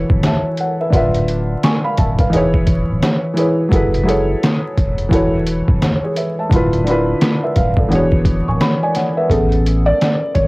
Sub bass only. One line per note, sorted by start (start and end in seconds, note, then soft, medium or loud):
0.11 0.22 D1 medium
0.93 1.55 D1 loud
1.99 2.29 D1 medium
2.34 2.83 E1 loud
2.90 3.01 D1 medium
3.72 4.34 F#1 loud
4.78 5.08 E1 medium
5.12 5.62 E1 loud
5.69 5.80 D1 medium
6.51 7.14 D1 loud
7.57 7.87 D1 loud
7.91 8.41 E1 loud
8.47 8.59 D1 loud
9.30 9.93 A1 loud
10.36 10.47 G#1 medium